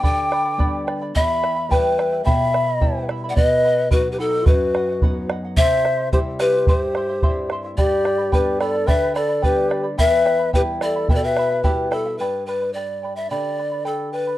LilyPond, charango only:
\new Staff \with { instrumentName = "Charango" } { \time 2/4 \key g \major \tempo 4 = 108 <g' b' d'' g'' b''>8 <b' d'' g'' b''>16 <b' d'' b''>16 <g' b' d'' g'' b''>8 <b' d'' g'' b''>16 <b' d'' b''>16 | <e' g' e'' g'' b''>8 <e' e'' g'' b''>16 <e' e'' b''>16 <e' g' e'' g'' b''>8 <e' e'' g'' b''>16 <e' e'' b''>16 | <e' g' e'' g'' b''>8 <e' e'' g'' b''>16 <e' e'' b''>16 <e' g' e'' g'' b''>8 <e' e'' g'' b''>16 <e' e'' b''>16 | <b' dis'' fis''>8 <b' dis'' fis''>16 <dis'' fis''>16 <b' dis'' fis''>8 <b' dis'' fis''>16 <dis'' fis''>16 |
<b' dis'' fis''>8 <b' dis'' fis''>16 <dis'' fis''>16 <b' dis'' fis''>8 <b' dis'' fis''>16 <dis'' fis''>16 | <e' g' c'' e'' c'''>8 <e' c'' e'' c'''>16 <e' e'' c'''>16 <e' g' c'' e'' c'''>8 <e' c'' e'' c'''>16 <e' e'' c'''>16 | <e' g' c'' e'' c'''>8 <e' c'' e'' c'''>16 <e' e'' c'''>16 <e' g' c'' e'' c'''>8 <e' c'' e'' c'''>16 <e' e'' c'''>16 | <g' b' d'' g'' b''>8 <b' d'' g'' b''>16 <b' d'' b''>16 <g' b' d'' g'' b''>8 <b' d'' g'' b''>16 <b' d'' b''>16 |
<g' b' d'' g'' b''>8 <b' d'' g'' b''>16 <b' d'' b''>16 <g' b' d'' g'' b''>8 <b' d'' g'' b''>16 <b' d'' b''>16 | <e' g' e'' g'' b''>8 <e' e'' g'' b''>16 <e' e'' b''>16 <e' g' e'' g'' b''>8 <e' e'' g'' b''>16 <e' e'' b''>16 | <e' g' e'' g'' b''>8 <e' e'' g'' b''>16 <e' e'' b''>16 <e' g' e'' g'' b''>8 <e' e'' g'' b''>16 <e' e'' b''>16 | <g' b' d'' g'' b''>8 <b' d'' g'' b''>16 <b' d'' b''>16 <g' b' d'' g'' b''>8 <b' d'' g'' b''>16 <b' d'' b''>16 |
<g' b' d'' g'' b''>8 <b' d'' g'' b''>16 <b' d'' b''>16 <g' b' d'' g'' b''>8 <b' d'' g'' b''>16 <b' d'' b''>16 | }